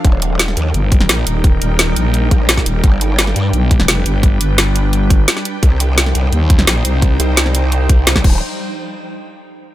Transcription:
0.04 0.55 D#1 loud
0.04 5.59 G3 medium
0.04 2.81 D#4 medium
0.04 2.81 A#4 medium
0.04 8.20 G5 loud
0.04 kick loud
0.04 closed hi-hat medium
0.22 closed hi-hat loud
0.39 snare loud
0.39 closed hi-hat medium
0.48 snare soft
0.57 0.73 D#2 medium
0.57 closed hi-hat medium
0.74 1.08 G1 loud
0.74 closed hi-hat medium
0.92 kick loud
0.92 closed hi-hat medium
1.01 snare medium
1.09 1.25 A#1 medium
1.09 snare loud
1.09 closed hi-hat medium
1.27 1.60 D#1 medium
1.27 closed hi-hat loud
1.44 kick loud
1.44 closed hi-hat medium
1.61 1.95 D#1 loud
1.61 closed hi-hat medium
1.79 snare loud
1.79 closed hi-hat medium
1.96 2.30 A#1 medium
1.96 closed hi-hat medium
2.14 closed hi-hat medium
2.31 2.65 A#1 loud
2.31 kick loud
2.31 closed hi-hat medium
2.49 snare loud
2.49 closed hi-hat medium
2.57 kick medium
2.57 snare soft
2.66 2.82 D#1 medium
2.66 closed hi-hat medium
2.84 3.35 G1 loud
2.84 5.60 D4 medium
2.84 5.60 B4 medium
2.84 kick loud
2.84 closed hi-hat medium
3.01 closed hi-hat medium
3.19 snare loud
3.19 closed hi-hat medium
3.27 snare soft
3.36 3.52 G2 loud
3.36 closed hi-hat medium
3.53 3.87 B1 loud
3.53 closed hi-hat medium
3.71 kick loud
3.71 closed hi-hat medium
3.80 snare medium
3.88 4.04 F1 loud
3.88 snare loud
3.88 closed hi-hat medium
4.06 4.39 G1 medium
4.06 closed hi-hat medium
4.23 kick loud
4.23 closed hi-hat medium
4.41 5.26 G1 loud
4.41 closed hi-hat medium
4.58 snare loud
4.58 closed hi-hat medium
4.76 closed hi-hat medium
4.93 closed hi-hat medium
5.10 kick loud
5.10 closed hi-hat medium
5.28 snare loud
5.28 closed hi-hat medium
5.37 snare soft
5.45 closed hi-hat loud
5.63 6.14 C2 loud
5.63 8.22 G3 medium
5.63 8.22 D#4 medium
5.63 8.22 C5 medium
5.63 kick loud
5.63 closed hi-hat medium
5.80 closed hi-hat loud
5.98 snare loud
5.98 closed hi-hat medium
6.06 snare soft
6.15 6.31 C2 loud
6.15 closed hi-hat loud
6.33 6.66 D#2 loud
6.33 closed hi-hat medium
6.50 kick loud
6.50 closed hi-hat medium
6.59 snare medium
6.67 6.83 A#1 loud
6.67 snare loud
6.67 closed hi-hat medium
6.85 7.18 C2 medium
6.85 closed hi-hat loud
7.02 kick loud
7.02 closed hi-hat medium
7.20 8.06 C2 medium
7.20 closed hi-hat medium
7.37 snare loud
7.37 closed hi-hat medium
7.46 snare soft
7.55 closed hi-hat loud
7.72 closed hi-hat medium
7.89 kick loud
7.89 closed hi-hat loud
8.07 8.24 C2 loud
8.07 snare loud
8.07 closed hi-hat medium
8.16 kick medium
8.16 snare soft
8.16 snare medium
8.24 8.41 D1 medium
8.24 kick loud
8.24 crash medium

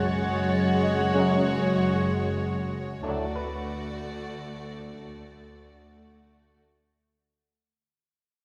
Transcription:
0.00 3.00 F#1 medium
0.00 3.00 F#2 medium
0.00 3.00 G#3 medium
0.00 3.00 F#4 medium
0.00 3.00 C#5 medium
0.00 2.68 F#6 medium
0.00 0.88 G#6 medium
0.00 0.88 A6 medium
0.83 2.68 D#5 medium
0.88 1.42 G#6 medium
1.14 1.36 F#2 medium
1.14 1.36 F#3 medium
1.14 1.36 G#3 medium
1.14 1.36 C#4 medium
3.02 6.62 D2 loud
3.02 3.25 A2 loud
3.02 3.25 F#3 loud
3.02 3.25 A3 loud
3.02 6.59 A3 loud
3.02 3.25 D4 loud
3.02 6.58 F#4 loud
3.02 6.62 D5 loud
3.35 5.21 B4 loud
4.61 6.47 C#6 medium
4.92 5.15 A2 medium
4.92 5.15 F#3 medium
4.92 5.15 A3 medium
4.92 5.15 D4 medium

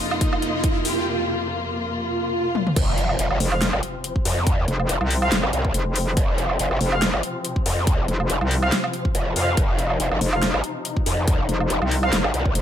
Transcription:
0.00 2.72 F2 medium
0.00 2.72 C3 medium
0.00 2.73 A#3 medium
0.00 0.77 D#4 medium
0.00 2.72 F4 medium
0.00 0.77 D#5 loud
0.00 riser medium
0.11 low woodblock medium
0.21 kick loud
0.21 closed hi-hat medium
0.33 low woodblock medium
0.42 closed hi-hat medium
0.64 kick loud
0.64 closed hi-hat medium
0.85 1.06 G4 medium
0.85 1.06 G5 medium
0.85 open hi-hat medium
1.91 swell medium
2.55 high tom medium
2.67 mid tom medium
2.76 3.17 F1 loud
2.76 12.62 C3 medium
2.76 12.62 F3 medium
2.76 9.56 C4 medium
2.76 kick loud
2.76 closed hi-hat medium
2.76 crash loud
2.76 impact medium
2.98 closed hi-hat medium
3.09 low woodblock soft
3.19 3.29 F1 loud
3.19 closed hi-hat medium
3.31 3.39 G1 loud
3.31 low woodblock medium
3.40 3.71 F1 loud
3.40 open hi-hat medium
3.52 3.63 F4 medium
3.52 3.63 C5 medium
3.52 3.63 F5 medium
3.52 low woodblock medium
3.62 snare loud
3.62 closed hi-hat medium
3.73 3.81 G#1 loud
3.73 low woodblock medium
3.83 closed hi-hat medium
4.04 closed hi-hat medium
4.16 kick medium
4.25 4.66 F2 medium
4.25 open hi-hat loud
4.47 kick loud
4.47 closed hi-hat medium
4.68 4.88 F1 loud
4.68 closed hi-hat medium
4.80 low woodblock medium
4.89 4.99 F1 loud
4.89 closed hi-hat medium
5.01 5.30 C2 loud
5.01 low woodblock medium
5.11 open hi-hat medium
5.22 5.33 F4 medium
5.22 5.33 C5 medium
5.22 5.33 F5 loud
5.22 low woodblock medium
5.32 5.41 F1 loud
5.32 snare loud
5.32 closed hi-hat medium
5.43 5.51 G#1 loud
5.43 low woodblock medium
5.53 5.73 C2 loud
5.53 closed hi-hat medium
5.65 kick medium
5.74 6.15 F1 loud
5.74 closed hi-hat medium
5.96 open hi-hat medium
6.17 6.58 F1 loud
6.17 kick loud
6.17 closed hi-hat medium
6.38 closed hi-hat medium
6.50 low woodblock medium
6.59 6.69 F1 medium
6.59 closed hi-hat medium
6.71 6.79 G1 medium
6.71 low woodblock medium
6.81 7.12 F1 medium
6.81 open hi-hat medium
6.92 7.03 F4 medium
6.92 7.03 C5 medium
6.92 7.03 F5 medium
6.92 low woodblock medium
7.02 snare loud
7.02 closed hi-hat medium
7.14 7.22 G#1 loud
7.14 low woodblock medium
7.23 closed hi-hat medium
7.45 closed hi-hat medium
7.56 kick medium
7.66 8.07 F2 medium
7.66 open hi-hat medium
7.87 kick loud
7.87 closed hi-hat medium
8.08 8.28 F1 loud
8.08 closed hi-hat medium
8.20 low woodblock medium
8.30 8.39 F1 loud
8.30 closed hi-hat medium
8.41 8.71 C2 loud
8.41 low woodblock medium
8.51 open hi-hat medium
8.62 8.73 F4 medium
8.62 8.73 C5 medium
8.62 8.73 F5 loud
8.62 low woodblock medium
8.72 snare loud
8.72 closed hi-hat medium
8.84 low woodblock medium
8.93 closed hi-hat medium
9.05 kick medium
9.15 9.34 F1 medium
9.15 closed hi-hat medium
9.36 9.56 F2 medium
9.36 9.55 F4 medium
9.36 9.55 C5 medium
9.36 9.55 F5 loud
9.36 open hi-hat medium
9.57 9.98 F1 loud
9.57 12.62 D#4 medium
9.57 kick loud
9.57 closed hi-hat medium
9.79 closed hi-hat medium
9.90 low woodblock medium
10.00 10.10 F1 medium
10.00 closed hi-hat medium
10.11 10.20 G1 loud
10.11 low woodblock medium
10.21 10.52 F1 loud
10.21 open hi-hat medium
10.33 10.43 F4 medium
10.33 10.43 C5 medium
10.33 10.43 F5 medium
10.33 low woodblock medium
10.42 snare loud
10.42 closed hi-hat medium
10.54 10.62 G#1 loud
10.54 low woodblock medium
10.64 closed hi-hat medium
10.85 closed hi-hat medium
10.97 kick medium
11.06 11.47 F2 loud
11.06 open hi-hat medium
11.28 kick loud
11.28 closed hi-hat medium
11.49 11.68 F1 loud
11.49 closed hi-hat soft
11.60 low woodblock medium
11.70 11.80 F1 loud
11.70 closed hi-hat medium
11.82 12.11 C2 loud
11.82 low woodblock medium
11.91 open hi-hat medium
12.03 12.14 F4 loud
12.03 12.14 C5 medium
12.03 12.14 F5 loud
12.03 low woodblock medium
12.13 12.22 F1 loud
12.13 snare loud
12.13 closed hi-hat medium
12.24 12.32 G#1 loud
12.24 low woodblock medium
12.34 12.54 C2 loud
12.34 closed hi-hat medium
12.46 kick medium
12.55 12.62 F1 loud
12.55 closed hi-hat medium

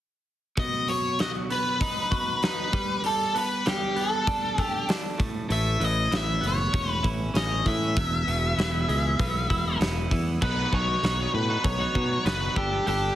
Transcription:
0.57 2.12 B2 medium
0.57 0.89 D#5 medium
0.57 kick medium
0.57 open hi-hat medium
0.88 1.19 F#3 medium
0.88 1.20 C#5 medium
0.88 open hi-hat soft
1.19 2.72 F#3 medium
1.19 1.29 D#5 medium
1.19 snare medium
1.19 open hi-hat medium
1.50 3.34 B3 medium
1.50 2.43 B4 medium
1.50 open hi-hat soft
1.81 2.42 D#4 medium
1.81 kick medium
1.81 open hi-hat medium
2.11 2.73 F#4 medium
2.11 kick medium
2.11 open hi-hat soft
2.42 2.74 D#4 medium
2.42 3.01 B4 medium
2.42 snare medium
2.42 open hi-hat medium
2.73 3.03 G3 medium
2.73 kick medium
2.73 open hi-hat soft
3.04 3.65 G3 medium
3.04 3.37 A4 medium
3.04 open hi-hat medium
3.35 3.96 B3 medium
3.35 3.65 B4 medium
3.35 open hi-hat soft
3.66 5.20 G3 medium
3.66 3.99 G4 medium
3.66 snare medium
3.66 open hi-hat medium
3.96 5.21 B3 medium
3.96 open hi-hat soft
4.01 4.62 A4 medium
4.27 4.87 D4 medium
4.27 kick loud
4.27 open hi-hat medium
4.58 4.87 G4 medium
4.58 5.20 A4 medium
4.58 kick medium
4.58 open hi-hat soft
4.88 5.20 D4 medium
4.88 snare medium
4.88 open hi-hat medium
5.18 5.48 A2 medium
5.18 kick medium
5.18 open hi-hat soft
5.49 5.77 A1 medium
5.49 7.03 A2 medium
5.49 5.83 E5 loud
5.49 open hi-hat medium
5.80 6.07 A1 medium
5.80 6.10 E3 medium
5.80 open hi-hat soft
5.85 6.15 D#5 medium
6.11 6.39 A1 medium
6.11 7.65 E3 medium
6.11 snare medium
6.11 open hi-hat medium
6.17 6.46 E5 medium
6.41 6.69 F#1 medium
6.41 8.88 B3 medium
6.41 open hi-hat soft
6.47 6.89 C#5 medium
6.73 7.00 E1 medium
6.73 7.33 C#4 medium
6.73 kick loud
6.73 open hi-hat medium
6.89 7.03 B4 medium
7.03 7.31 A1 medium
7.03 7.96 E4 medium
7.03 kick medium
7.03 open hi-hat soft
7.34 7.61 A1 medium
7.34 7.96 C#4 medium
7.34 7.67 D#5 medium
7.34 snare medium
7.34 open hi-hat medium
7.66 7.98 A2 medium
7.66 7.96 E3 medium
7.66 9.77 E5 medium
7.66 kick medium
7.66 open hi-hat soft
7.97 8.23 E1 medium
7.97 9.50 E2 medium
7.97 kick loud
7.97 open hi-hat medium
8.27 8.54 E1 medium
8.27 9.81 B2 medium
8.27 open hi-hat soft
8.58 8.84 E1 medium
8.58 10.10 E3 medium
8.58 snare medium
8.58 open hi-hat medium
8.88 9.15 C#2 medium
8.88 10.42 G#3 medium
8.88 open hi-hat soft
9.20 9.46 B1 medium
9.20 9.79 B3 medium
9.20 kick loud
9.20 open hi-hat medium
9.50 9.76 E1 medium
9.50 10.42 E4 medium
9.50 kick medium
9.50 open hi-hat soft
9.80 10.07 E1 medium
9.80 10.41 B3 medium
9.80 snare medium
9.80 open hi-hat medium
10.11 10.38 E2 medium
10.11 10.41 E3 medium
10.11 kick medium
10.11 open hi-hat soft
10.41 10.64 B1 medium
10.41 11.02 B2 medium
10.41 10.70 F#3 medium
10.41 10.71 B3 medium
10.41 10.71 D#4 medium
10.41 10.73 F#4 medium
10.41 10.74 B4 loud
10.41 kick medium
10.41 crash medium
10.71 10.95 B1 medium
10.71 11.03 F#3 medium
10.71 11.04 B3 medium
10.71 11.03 D#4 medium
10.71 11.04 F#4 medium
10.71 11.31 C#5 medium
10.71 kick medium
11.03 11.25 B1 medium
11.03 11.49 B2 medium
11.03 11.32 F#3 medium
11.03 11.20 B3 medium
11.03 11.18 D#4 medium
11.03 11.16 F#4 medium
11.03 snare medium
11.03 open hi-hat soft
11.17 11.33 B3 medium
11.17 11.33 D#4 medium
11.17 11.33 F#4 medium
11.33 11.56 A2 medium
11.33 11.64 B4 medium
11.33 muted clean electric guitar stroke soft
11.49 11.81 B3 soft
11.49 11.79 D#4 medium
11.49 11.77 F#4 medium
11.64 11.86 B1 medium
11.64 12.26 C#5 medium
11.64 kick loud
11.64 open hi-hat soft
11.78 11.94 B3 medium
11.78 11.94 D#4 medium
11.78 11.94 F#4 medium
11.93 12.17 B2 medium
11.93 12.24 F#3 medium
11.93 12.25 B3 medium
11.93 12.25 D#4 medium
11.93 12.26 F#4 medium
11.93 kick medium
12.24 12.48 F#1 medium
12.24 12.54 B2 medium
12.24 12.54 F#3 medium
12.24 12.42 B3 medium
12.24 12.40 D#4 medium
12.24 12.39 F#4 medium
12.24 12.55 B4 medium
12.24 snare medium
12.24 open hi-hat soft
12.40 12.55 B3 medium
12.40 12.55 D#4 medium
12.40 12.54 F#4 medium
12.55 12.79 G1 medium
12.55 12.85 G3 medium
12.55 12.72 B3 medium
12.55 12.70 D4 medium
12.55 12.85 G4 medium
12.55 12.70 A4 medium
12.55 kick medium
12.70 12.87 B3 medium
12.70 12.87 D4 medium
12.70 12.88 A4 medium
12.86 13.09 G1 medium
12.86 13.15 G3 medium
12.86 13.15 B3 medium
12.86 13.15 D4 medium
12.86 13.15 G4 medium
12.86 13.15 A4 medium
12.86 open hi-hat soft

